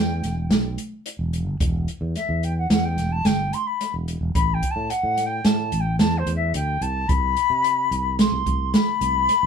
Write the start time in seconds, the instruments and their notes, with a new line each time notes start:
Already playing: fretless electric bass E2, flute G5
0.23 fretless electric bass E1, snare, closed hi-hat
0.50 fretless electric bass B1, snare, closed hi-hat
0.78 closed hi-hat
1.06 closed hi-hat
1.19 fretless electric bass E1
1.33 closed hi-hat
1.46 fretless electric bass G1
1.60 fretless electric bass E1, kick, closed hi-hat
1.88 closed hi-hat
2.01 fretless electric bass E2
2.15 flute E5, snare, closed hi-hat
2.29 fretless electric bass E2
2.43 flute G5, closed hi-hat
2.58 flute F#5
2.70 fretless electric bass E2, flute F#5, snare, closed hi-hat
2.85 flute G5
2.97 fretless electric bass E1, snare, closed hi-hat
3.12 flute A5
3.25 fretless electric bass G1, flute G5, snare, closed hi-hat
3.53 flute C6, closed hi-hat
3.67 flute B5
3.81 snare, closed hi-hat
3.94 fretless electric bass E1
4.08 closed hi-hat
4.21 fretless electric bass E1
4.35 fretless electric bass A1, flute B5, kick, closed hi-hat
4.54 flute G5
4.63 kick, closed hi-hat
4.71 flute A5
4.76 fretless electric bass A2
4.90 flute F#5, closed hi-hat
5.04 fretless electric bass A2
5.17 snare, closed hi-hat
5.26 flute G5
5.45 fretless electric bass A2, flute A5, snare, closed hi-hat
5.72 fretless electric bass A1, closed hi-hat
5.80 flute G5
5.99 fretless electric bass E2, flute A5, snare, closed hi-hat
6.18 flute C5
6.27 fretless electric bass E2, closed hi-hat
6.36 flute E5
6.54 fretless electric bass D2, flute G5, closed hi-hat
6.81 fretless electric bass C2, flute A5, closed hi-hat
7.08 fretless electric bass C2, flute B5, kick, closed hi-hat
7.37 closed hi-hat
7.50 fretless electric bass C3
7.64 closed hi-hat
7.91 fretless electric bass C2, closed hi-hat
8.19 flute C6, snare, closed hi-hat
8.32 fretless electric bass C2
8.46 fretless electric bass C2, kick, closed hi-hat
8.73 flute B5, snare, closed hi-hat
9.01 fretless electric bass C2, closed hi-hat
9.29 snare, closed hi-hat
9.43 fretless electric bass B1